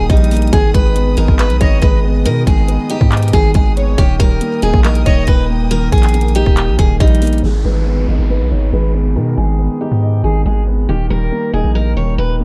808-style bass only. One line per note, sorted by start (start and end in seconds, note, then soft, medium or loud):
0.10 0.51 A#1 loud
0.53 0.74 G#1 loud
0.74 1.16 G#1 loud
1.18 1.28 G#1 loud
1.28 1.51 G#1 loud
1.50 1.60 B1 loud
1.61 1.81 G#1 loud
1.82 2.27 G#1 loud
2.25 2.46 B2 loud
2.47 2.78 G#1 loud
3.01 3.32 G#2 loud
3.33 3.54 G#1 loud
3.55 3.96 G#1 loud
3.98 4.19 D#1 loud
4.20 4.40 D#1 loud
4.63 4.73 D#1 loud
4.74 5.05 A#1 loud
5.06 5.27 D#1 loud
5.28 5.90 D#1 loud
5.92 6.44 A#1 loud
6.46 6.69 D#1 loud
6.68 6.78 A#1 loud
6.79 6.99 D#1 loud
7.00 7.42 A#1 loud
7.43 7.64 G#1 loud
7.65 8.06 G#1 loud
8.08 8.18 G#1 loud
8.19 8.42 G#1 loud
8.41 8.51 B1 loud
8.51 8.72 G#1 loud
8.73 9.18 G#1 loud
9.16 9.37 B2 medium
9.38 9.69 G#1 loud
9.92 10.23 G#2 loud
10.24 10.45 G#1 loud
10.46 10.87 G#1 loud
10.89 11.10 D#1 loud
11.10 11.31 D#1 loud
11.54 11.64 D#1 loud
11.64 11.95 A#1 loud
11.97 12.17 D#1 loud
12.18 12.44 D#1 loud